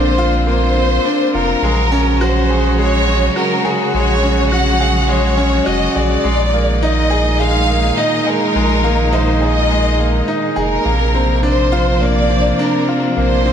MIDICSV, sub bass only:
0, 0, Header, 1, 2, 480
1, 0, Start_track
1, 0, Tempo, 576923
1, 1356, Time_signature, 4, 2, 24, 8
1, 11254, End_track
2, 0, Start_track
2, 0, Title_t, "Sub bass"
2, 0, Program_c, 0, 38
2, 0, Note_on_c, 0, 34, 102
2, 825, Note_off_c, 0, 34, 0
2, 1117, Note_on_c, 0, 29, 93
2, 1293, Note_off_c, 0, 29, 0
2, 1349, Note_on_c, 0, 34, 102
2, 2742, Note_off_c, 0, 34, 0
2, 3279, Note_on_c, 0, 34, 94
2, 4667, Note_off_c, 0, 34, 0
2, 4717, Note_on_c, 0, 29, 92
2, 4893, Note_off_c, 0, 29, 0
2, 4957, Note_on_c, 0, 34, 78
2, 5133, Note_off_c, 0, 34, 0
2, 5195, Note_on_c, 0, 34, 92
2, 6585, Note_off_c, 0, 34, 0
2, 7115, Note_on_c, 0, 34, 97
2, 8505, Note_off_c, 0, 34, 0
2, 8791, Note_on_c, 0, 29, 75
2, 8970, Note_off_c, 0, 29, 0
2, 9028, Note_on_c, 0, 34, 99
2, 10421, Note_off_c, 0, 34, 0
2, 10957, Note_on_c, 0, 34, 101
2, 11254, Note_off_c, 0, 34, 0
2, 11254, End_track
0, 0, End_of_file